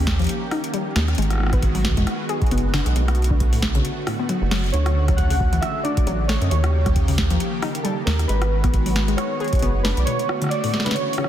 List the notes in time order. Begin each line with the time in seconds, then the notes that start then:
Already playing: D#2 D#3 A#3 C#4 G4
0.07 kick, snare
0.19 F3, closed hi-hat
0.22 closed hi-hat
0.24 closed hi-hat
0.27 closed hi-hat
0.29 closed hi-hat
0.51 D#4, cross-stick, open hi-hat
0.64 closed hi-hat
0.74 G3, closed hi-hat
0.96 D#2 A#3, cross-stick, snare, open hi-hat
1.08 cross-stick, closed hi-hat
1.15 G#1 G#3 B3 F#4, closed hi-hat
1.18 G#3, closed hi-hat
1.22 closed hi-hat
1.30 cross-stick, closed hi-hat
1.33 cross-stick
1.35 cross-stick
1.38 cross-stick
1.40 cross-stick
1.43 cross-stick
1.47 cross-stick
1.50 kick, cross-stick
1.53 B3, cross-stick, closed hi-hat
1.62 kick, closed hi-hat
1.75 F#3, open hi-hat
1.85 kick, snare
1.88 kick
1.91 kick
1.94 kick
1.97 G#3, kick, closed hi-hat
2.00 kick
2.02 kick
2.04 kick, cross-stick, closed hi-hat
2.29 G#4, closed hi-hat
2.42 kick, closed hi-hat
2.46 closed hi-hat
2.51 F#1 B3, closed hi-hat
2.58 closed hi-hat
2.74 D4, cross-stick, snare, open hi-hat
2.86 B1, closed hi-hat
2.96 B1 B2 D3 A3 F#4, closed hi-hat
3.08 cross-stick, closed hi-hat
3.15 closed hi-hat
3.22 closed hi-hat
3.24 closed hi-hat
3.30 D3, kick
3.40 kick, closed hi-hat
3.53 A2, open hi-hat
3.62 kick, snare, closed hi-hat
3.75 C#3, closed hi-hat
3.85 closed hi-hat
4.07 A2, cross-stick, open hi-hat
4.19 B3
4.29 F#3, closed hi-hat
4.42 F#1
4.51 F#3, cross-stick, snare, open hi-hat
4.56 open hi-hat
4.59 open hi-hat
4.64 open hi-hat
4.66 open hi-hat
4.70 D2 C#3 D3 C#5, closed hi-hat, open hi-hat
4.86 cross-stick, closed hi-hat
5.08 F#3, kick, cross-stick, closed hi-hat
5.17 F#5, kick, closed hi-hat
5.30 C#3, open hi-hat
5.40 kick
5.53 E3, closed hi-hat
5.61 E5, cross-stick, closed hi-hat
5.83 D4 D5, closed hi-hat
5.97 kick, closed hi-hat
6.07 A1 F#3, closed hi-hat
6.28 A3 C#5, cross-stick, snare, open hi-hat
6.42 F#2 D#5, closed hi-hat
6.50 D#2 D#3 A#3 G4 C#5, closed hi-hat
6.64 cross-stick, closed hi-hat
6.86 G3, kick, cross-stick, closed hi-hat
6.96 kick, closed hi-hat
7.08 C#3, open hi-hat
7.18 kick, snare
7.30 F3, closed hi-hat
7.40 closed hi-hat
7.62 D#4, cross-stick, open hi-hat
7.75 closed hi-hat
7.83 G3 A4, closed hi-hat
8.05 D#2 A#3 A#4, snare, open hi-hat
8.19 cross-stick, closed hi-hat
8.28 G#1 G#3 B3 F#4 B4, closed hi-hat
8.42 cross-stick, closed hi-hat
8.64 B3, kick, cross-stick, closed hi-hat
8.74 kick, closed hi-hat
8.86 F#3, open hi-hat
8.96 snare
9.08 G#3, closed hi-hat
9.17 C#5, cross-stick, closed hi-hat
9.40 G#4, closed hi-hat
9.44 closed hi-hat
9.48 closed hi-hat
9.53 kick, closed hi-hat
9.55 closed hi-hat
9.59 F#1, closed hi-hat
9.62 B3, closed hi-hat
9.83 D4 B4, snare, open hi-hat
9.97 B1 D5, closed hi-hat
10.05 B2 D3 A3 F#4 C#5, closed hi-hat
10.19 closed hi-hat
10.29 cross-stick
10.42 D3, cross-stick, closed hi-hat
10.46 cross-stick
10.49 D5, cross-stick, closed hi-hat
10.64 A2, open hi-hat
10.74 snare
10.80 snare
10.84 C#3 B4, snare, closed hi-hat
10.91 C#5, snare
10.96 E3 C#4, closed hi-hat
11.13 open hi-hat
11.18 C#3, cross-stick
11.24 cross-stick